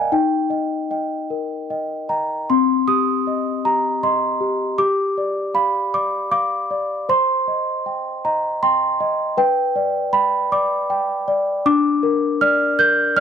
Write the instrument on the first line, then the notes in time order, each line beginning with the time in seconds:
celesta
Already playing: A#4 D5 D#5 F5 G5 G#5 A#5
0.12 D#4 G5
0.50 D#5 G5
0.91 D#5 G5
1.30 A#4
1.70 D#5 G5
2.09 D#5 G5 A#5
2.50 C4 C6
2.88 G4 D#6
3.27 D#5
3.65 G4 A#5
4.03 D#5 C6
4.41 G4
4.78 G4 D6
5.18 D5
5.54 F5 B5
5.94 D5 D6
6.31 F5 D6
6.71 D5
7.09 C5 C6
7.48 D#5
7.86 G5
8.25 D#5 A#5
8.63 G5 C6
9.00 D#5
9.37 B4 G5
9.76 D5
10.13 G5 B5
10.52 D5 D6
10.90 G5
11.28 D5
11.66 D4 D6
12.03 A#4
12.41 D5 F6
12.79 A#4 G6
13.17 F6